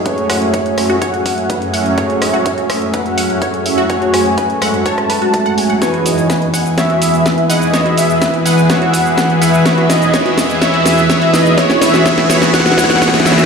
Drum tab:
HH |x-x-o-x-x-x-o---x-x-o-x-x-x-o-x-|x-x-o-x-x-x-o-x-x-x-o-x-x-x-o---|x-x-o-x-x-x-o-x-x-x-o-x-x-x-o-x-|x-x-o-x-x-x-o-x-x-x-o-x-x-x-o---|
SH |--------------------------------|--------------------------------|--------------------------------|x---x-x-x---x-x-x---x-x-x---x-x-|
SD |----r-------r-------------------|----r-------r-------------------|----r-------r-----r-------------|o-------o-------o-------o-------|
BD |o-------o-------o---o---o-------|o-------o---o---o-------o-------|o-------o-------o---o---o-------|o-------o---o---o-------o-------|

HH |x-x-o-x-x-x-o-x-x-x-o-x-x-x-o-x-|x-x-o-x-x-x-o-x-x-x-o-x-x-x-o-x-|x-x-o---x-x-o-x-x-x-o-x-x-x-o-x-|
SH |x---x-x-x---x-x-x---x-x-x---x-x-|x---x-x-x---x-x-x---x-x-x---x-x-|x-x-x-x-x---x-x-x-x-x-x-x-x-x-x-|
SD |o-------o-------o-------o-------|o---o---o---o---o---o---o---o---|o-o-o-o-o-o-o-o-ooooooooooooooo-|
BD |o-------o-------o---o---o-------|o-------o---o---o-------o-------|o-------o-------o---o---o-------|